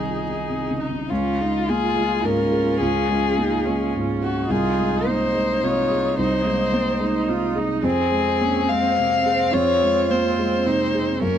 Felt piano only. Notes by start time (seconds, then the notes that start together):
Already playing: C2 C3 D#4
0.08 F4
0.30 D#4
0.50 C3
0.71 C#3
0.92 C3
1.11 C#2
1.40 G#3
1.69 A#3
1.96 G#3
2.24 G#2
2.52 G#4
2.80 C#2
3.09 G#3
3.38 A#3
3.66 G#3
3.94 G#2
4.22 G#4
4.50 C2
4.78 G#3
5.06 A#3
5.34 G#3
5.63 C3
5.91 G#4
6.19 C2
6.46 G#3
6.73 A#3
7.00 G#3
7.28 C3
7.55 G#4
7.83 F2
8.11 G#3
8.41 A#3
8.70 G#3
8.98 C3
9.26 G#4
9.53 F2
9.82 G#3
10.11 A#3
10.38 G#3
10.66 C3
10.94 G#4
11.22 F#2